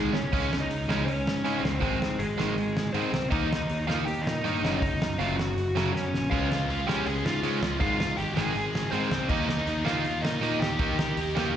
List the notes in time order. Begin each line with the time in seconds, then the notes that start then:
Already playing: G#2 D#3 G#3
0.13 C2 C#4 C#5, snare
0.32 C#2 C#3 G#3 C#4, kick, crash
0.53 snare
0.61 D#4 D#5
0.70 C#2, open hi-hat
0.88 C#2 C#3 G#3 C#4 D#4 D#5, snare
1.05 C#2 C#4 C#5, open hi-hat
1.26 G#2, snare
1.44 G#2 C#3 G#3 C#4, open hi-hat
1.60 C#2 C5
1.65 snare
1.81 G#1 G#2 D#3 G#3 C4 C5, kick, open hi-hat
2.00 G#2, snare
2.19 G#1 G#3 G#4, open hi-hat
2.38 G#1 G#2 D#3 G#3, snare
2.56 G#1, open hi-hat
2.77 snare
2.93 G#2 D#3 G#3 C4 C5, open hi-hat
3.12 C2, snare
3.30 D#2 D#3 A#3 D#4 D#5, kick, crash
3.53 snare
3.69 D#2, open hi-hat
3.87 D#2 D#3 A#3 D#4 F4 F5, snare
4.05 D#2 G4 G5, open hi-hat
4.22 D#4 D#5
4.26 A#2, snare
4.44 G2 D#3 A#3 D#4, open hi-hat
4.63 F#1 F#2 C#3 F#3, snare
4.78 F#1 D#4 D#5, kick
4.82 open hi-hat
5.01 F#2, snare
5.18 F#1 F#2 C#3 F#3 F4 F5, open hi-hat
5.36 F#1 F#4 F#5, snare
5.56 F#1, open hi-hat
5.76 F#2 C#3 F#3, snare
5.92 F#2 C#4 C#5, snare
6.13 A#1, snare
6.30 C#2 C#3 G#3 C#4 F4 F5, kick, crash
6.52 snare
6.68 C#2 C#3 G#3 C#4, open hi-hat
6.87 C#2 C#3 G#3 C#4 G4 G5, snare
7.06 C#2 C#3 G#3 C#4 G#4 G#5, open hi-hat
7.23 G#2 F4 F5, snare
7.43 G#2 C#3 G#3 C#4, open hi-hat
7.62 C#2 C#3 G#3 C#4, snare
7.80 G#1 G#2 D#3 G#3 F4 F5, kick, open hi-hat
8.00 G#2, snare
8.16 G#1 G#2 D#3 G#3 G4 G5, open hi-hat
8.34 G#1 G#2 D#3 G#3 G#4 G#5, snare
8.54 G#1 G#2 D#3 G#3, open hi-hat
8.75 snare
8.91 G#2 D#3 G#3 C4 C5, open hi-hat
9.10 C2 G#2 D#3 G#3, snare
9.29 D#2 D#3 A#3 D#4 D#5, kick, crash
9.49 snare
9.66 D#2 D#3 A#3 D#4, open hi-hat
9.85 D#2 D#3 A#3 D#4 F4 F5, snare
10.04 D#2 D#3 A#3 D#4, open hi-hat
10.22 A#2 D#4 D#5, snare
10.41 A#2 D#3 A#3 D#4, open hi-hat
10.60 D#2 D#3 A#3 D#4 G4 G5, snare
10.79 D#2 D#3 A#3 D#4, kick, open hi-hat
10.99 D#3, snare
11.17 D#2 D#3 A#3 D#4, open hi-hat
11.36 D#2 D#3 A#3 D#4, snare